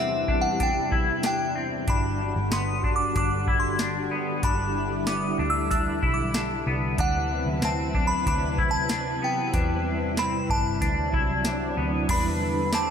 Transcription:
Already playing: string machine E2 C3 G3 D4 E4, clean electric guitar C4
0.00 synth bell E5
0.28 clean electric guitar D4, kick
0.41 synth bell F#5
0.60 clean electric guitar D4, synth bell G5, kick, closed hi-hat
0.92 clean electric guitar E4, kick
1.23 clean electric guitar D4, synth bell G5, snare, closed hi-hat
1.56 clean electric guitar C4
1.88 picked electric bass G1, string machine D3 G3 F#4, clean electric guitar D4, synth bell B5, kick, closed hi-hat
2.36 picked electric bass G1
2.52 picked electric bass G1, clean electric guitar B3, synth bell C6, snare, closed hi-hat
2.84 clean electric guitar D4, kick
2.96 synth bell D6
3.16 picked electric bass G1, clean electric guitar D4, synth bell D6, kick, closed hi-hat
3.47 clean electric guitar E4, kick
3.60 synth bell C6
3.79 clean electric guitar D4, snare, closed hi-hat
4.11 clean electric guitar B3
4.43 picked electric bass G1, clean electric guitar D4, string machine E4, synth bell B5, kick, closed hi-hat
5.07 clean electric guitar B3, synth bell D6, snare, closed hi-hat
5.39 picked electric bass D2, clean electric guitar D4
5.50 synth bell E6
5.71 clean electric guitar D4, synth bell E6, kick, closed hi-hat
6.03 picked electric bass B1, clean electric guitar E4, kick
6.14 synth bell D6
6.34 clean electric guitar D4, snare, closed hi-hat
6.67 picked electric bass C2, clean electric guitar B3
6.98 picked electric bass D2, string machine C3 F#3 E4 B4, clean electric guitar D4, synth bell F#5, kick, closed hi-hat
7.46 picked electric bass D2
7.62 picked electric bass D2, clean electric guitar C4, synth bell A5, snare, closed hi-hat
7.94 clean electric guitar D4, kick
8.07 synth bell B5
8.26 picked electric bass D2, clean electric guitar D4, synth bell B5, kick, closed hi-hat
8.58 clean electric guitar E4, kick
8.71 synth bell A5
8.89 clean electric guitar D4, snare, closed hi-hat
9.22 clean electric guitar B3, synth bell G5
9.54 picked electric bass E2, string machine G3, clean electric guitar D4, kick, closed hi-hat
10.17 clean electric guitar C4, synth bell B5, snare, closed hi-hat
10.50 picked electric bass G1, clean electric guitar D4, synth bell A5, kick
10.81 picked electric bass D2, string machine C3 F#3 D4, clean electric guitar D4, kick, closed hi-hat
11.13 picked electric bass C2, clean electric guitar E4, kick
11.45 clean electric guitar D4, snare, closed hi-hat
11.77 picked electric bass D2, clean electric guitar B3
12.08 picked electric bass E2, string machine D3 G3 E4 B4, clean electric guitar E3 G3 D4 E4 B4, synth bell B5, kick, closed hi-hat, crash
12.40 clean electric guitar E4 B4
12.45 clean electric guitar D4
12.73 clean electric guitar C4, synth bell A5, glockenspiel D6, snare, closed hi-hat, tambourine

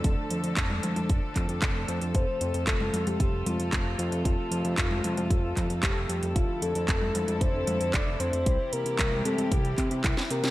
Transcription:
Already playing: string section D3 F3 A3 A4
0.04 analog synth bass F1, string section D4, kick, closed hi-hat
0.30 analog synth bass F2, closed hi-hat
0.44 analog synth bass F2, closed hi-hat
0.57 analog synth bass F1, kick, clap, closed hi-hat
0.70 high conga
0.83 analog synth bass F2, closed hi-hat, high conga
0.96 analog synth bass F2, closed hi-hat, high conga
1.09 analog synth bass F1, kick, closed hi-hat
1.36 analog synth bass F2, kick, clap, closed hi-hat
1.49 analog synth bass F2, closed hi-hat
1.62 analog synth bass F1, kick, clap, closed hi-hat
1.88 analog synth bass F2, closed hi-hat
2.01 analog synth bass F2, closed hi-hat
2.15 analog synth bass F1, string section C3 A3 F4, soft synth lead C5, kick, closed hi-hat
2.41 analog synth bass F2, closed hi-hat
2.54 analog synth bass F2, closed hi-hat
2.67 analog synth bass F1, soft synth lead A4, kick, clap, closed hi-hat
2.81 high conga
2.94 analog synth bass F2, closed hi-hat, high conga
3.07 analog synth bass F2, soft synth lead G4, closed hi-hat, high conga
3.20 analog synth bass F1, kick, closed hi-hat
3.46 analog synth bass F2, soft synth lead F4, closed hi-hat, high conga
3.59 analog synth bass F2, closed hi-hat
3.73 analog synth bass F1, kick, clap, closed hi-hat
3.99 analog synth bass F2, soft synth lead F4, closed hi-hat
4.12 analog synth bass F2, closed hi-hat
4.25 analog synth bass F1, soft synth lead F4, kick, closed hi-hat
4.51 analog synth bass F2, closed hi-hat
4.65 analog synth bass F2, closed hi-hat
4.78 analog synth bass F1, kick, clap, closed hi-hat
4.91 high conga
5.04 analog synth bass F2, closed hi-hat, high conga
5.17 analog synth bass F2, closed hi-hat, high conga
5.30 analog synth bass F1, kick, closed hi-hat
5.57 analog synth bass F2, kick, clap, closed hi-hat
5.70 analog synth bass F2, closed hi-hat
5.83 analog synth bass F1, soft synth lead G4, kick, clap, closed hi-hat
6.09 analog synth bass F2, soft synth lead G4, closed hi-hat
6.23 analog synth bass F2, closed hi-hat
6.35 analog synth bass F1, string section D3 F3 E4 A4, soft synth lead F4, kick, closed hi-hat
6.62 analog synth bass F2, soft synth lead A4, closed hi-hat
6.75 analog synth bass F2, closed hi-hat
6.88 analog synth bass F1, kick, clap, closed hi-hat
7.02 high conga
7.15 analog synth bass F2, closed hi-hat, high conga
7.28 analog synth bass F2, closed hi-hat, high conga
7.41 analog synth bass F1, soft synth lead C5, kick, closed hi-hat
7.67 analog synth bass F2, closed hi-hat, high conga
7.81 analog synth bass F2, closed hi-hat
7.93 analog synth bass F1, soft synth lead D5, kick, clap, closed hi-hat
8.20 analog synth bass F2, soft synth lead C5, closed hi-hat
8.33 analog synth bass F2, closed hi-hat
8.46 analog synth bass C2, string section C3 E3 G3 G4, kick, closed hi-hat
8.72 analog synth bass C3, soft synth lead A#4, closed hi-hat
8.86 analog synth bass C3, closed hi-hat
8.99 analog synth bass C2, kick, clap, closed hi-hat
9.12 high conga
9.25 analog synth bass C3, soft synth lead A4, closed hi-hat, high conga
9.38 analog synth bass C3, closed hi-hat, high conga
9.52 analog synth bass C2, soft synth lead G4, kick, closed hi-hat
9.65 closed hi-hat
9.78 analog synth bass C3, kick, clap, closed hi-hat
9.91 analog synth bass C3, closed hi-hat
10.04 analog synth bass C2, soft synth lead E4, kick, clap, closed hi-hat
10.17 snare
10.30 analog synth bass C3, soft synth lead A#4, closed hi-hat
10.44 analog synth bass C3, snare, closed hi-hat

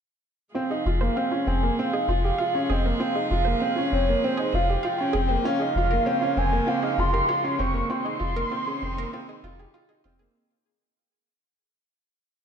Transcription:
0.55 string quartet C3 F3 G#3 F4 G#4, grand piano C4, synth arpeggio sound F4, soft synth lead F5
0.70 grand piano D#4, synth arpeggio sound G#4
0.86 sub bass F1, grand piano F4
1.01 grand piano A#3, synth arpeggio sound C5
1.17 grand piano C4, synth arpeggio sound F5
1.31 grand piano C#4, synth arpeggio sound F4
1.47 sub bass F1, grand piano C4, soft synth lead G#5
1.63 grand piano A#3
1.78 grand piano C4, soft synth lead F5
1.93 grand piano D#4, synth arpeggio sound G#4
2.08 sub bass F1, grand piano F4, synth arpeggio sound C5
2.24 grand piano G4
2.38 grand piano F4, synth arpeggio sound F5
2.53 grand piano C#4, synth arpeggio sound F4
2.69 sub bass F1, grand piano C4, synth arpeggio sound G#4, soft synth lead D#5
2.85 grand piano A#3, synth arpeggio sound C5
3.00 grand piano C4, synth arpeggio sound F4, soft synth lead F5
3.15 grand piano D#4, synth arpeggio sound G#4
3.30 sub bass F1, grand piano F4
3.45 grand piano A#3, synth arpeggio sound C5
3.60 grand piano C4, synth arpeggio sound F5
3.76 grand piano C#4, synth arpeggio sound F4
3.92 sub bass F1, grand piano C4, soft synth lead C#5
4.09 grand piano A#3
4.24 grand piano C4, soft synth lead C5
4.37 grand piano D#4, synth arpeggio sound G#4
4.53 sub bass F1, grand piano F4, synth arpeggio sound C5, soft synth lead F5
4.70 grand piano G4
4.83 grand piano F4, synth arpeggio sound F5, soft synth lead G5
4.98 grand piano C#4, synth arpeggio sound F4
5.13 sub bass F1, grand piano C4, synth arpeggio sound G#4
5.29 grand piano A#3, synth arpeggio sound C5
5.44 string quartet C#3 G#3 A#3, grand piano C#4, synth arpeggio sound F4, soft synth lead F5
5.60 grand piano D#4, synth arpeggio sound G#4
5.75 sub bass F1, grand piano F4
5.91 grand piano A#3, synth arpeggio sound A#4
6.06 grand piano C4, synth arpeggio sound C#5
6.21 grand piano C#4, synth arpeggio sound F4
6.36 sub bass F1, grand piano C4, soft synth lead G#5
6.52 grand piano A#3
6.67 grand piano C4, synth arpeggio sound F4, soft synth lead F5
6.83 grand piano D#4, synth arpeggio sound G#4
6.98 sub bass F1, grand piano F4, soft synth lead C6
7.13 grand piano G4, synth arpeggio sound A#4
7.29 grand piano F4, synth arpeggio sound C#5
7.44 grand piano C#4, synth arpeggio sound F4
7.59 sub bass F1, grand piano C4, soft synth lead C#6
7.74 grand piano A#3
7.88 string quartet C3 D#3 G3 D#4, grand piano C4, synth arpeggio sound F4, soft synth lead C6
8.05 grand piano D#4, synth arpeggio sound G#4
8.19 sub bass F1, grand piano F4
8.36 grand piano A#3, synth arpeggio sound A#4
8.51 grand piano C4, synth arpeggio sound F4
8.67 grand piano C#4, synth arpeggio sound G#4
8.82 sub bass F1, grand piano C4
8.97 grand piano A#3, synth arpeggio sound A#4
9.13 grand piano C4, synth arpeggio sound F4
9.29 grand piano D#4, synth arpeggio sound G#4
9.43 sub bass F1, synth arpeggio sound F4, grand piano F4
9.59 grand piano G4, synth arpeggio sound G#4
9.74 synth arpeggio sound F4, grand piano F4
9.89 grand piano D#4, synth arpeggio sound G#4
10.04 sub bass F1, grand piano C4, synth arpeggio sound F4
10.19 grand piano A#3, synth arpeggio sound G#4

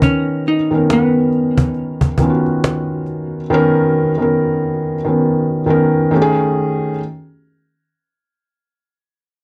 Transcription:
Already playing: felt piano D#3 B3 C#4 A#4
0.02 hollow-body jazz guitar C#4, cajon bass
0.46 hollow-body jazz guitar D#4, cajon slap
0.71 felt piano D#3 B3 C#4
0.75 felt piano A#4
0.90 hollow-body jazz guitar B3, cajon slap
1.32 cajon slap
1.57 cajon bass
1.74 cajon slap
2.01 cajon bass
2.18 felt piano D#3 B3, cajon bass
2.22 felt piano C#4 F4
2.30 felt piano F#4
2.46 cajon slap
2.64 cajon slap
3.06 cajon slap
3.50 felt piano D#3 B3 C#4 A#4
4.18 felt piano D#3 B3 C#4
4.22 felt piano A#4
5.04 felt piano D#3 B3 C#4
5.08 felt piano A#4
5.66 felt piano D#3 B3 C#4 A#4
6.11 felt piano D#3 A3 C#4
6.15 felt piano G4
6.22 felt piano G#4

